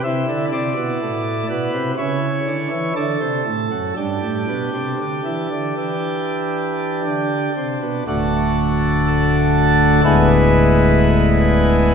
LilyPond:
<<
  \new Staff \with { instrumentName = "Pipe organ" } { \time 4/4 \key g \major \tempo 4 = 61 e''8 d''4 b'8 cis''4 a'4 | g'2.~ g'8 r8 | \key d \major r4 a'4 b'2 | }
  \new Staff \with { instrumentName = "Pipe organ" } { \clef bass \time 4/4 \key g \major << { e'2 e'4 r4 | d'1 | \key d \major <d,, d, a d' fis'>2 <d,, d, gis b e'>2 | } \\ { c16 d16 c16 b,16 a,8 b,16 c16 cis8 d16 e16 d16 c16 a,16 fis,16 | g,16 a,16 b,16 c16 d16 e16 d16 e4~ e16 d8 c16 b,16 | r1 | } >> }
>>